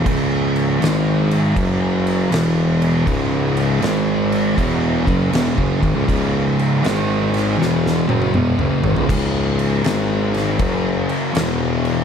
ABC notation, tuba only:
X:1
M:4/4
L:1/16
Q:"Swing" 1/4=80
K:C#m
V:1 name="Tuba" clef=bass
C,,4 G,,,3 z F,,,4 E,,,4 | C,,4 G,,,4 E,,,2 F,,,2 E,,, F,,, G,,, C,, | C,,3 z G,,,4 E,,,2 F,,,2 E,,, F,,, G,,, C,, | C,,4 G,,,4 F,,,3 z E,,,4 |]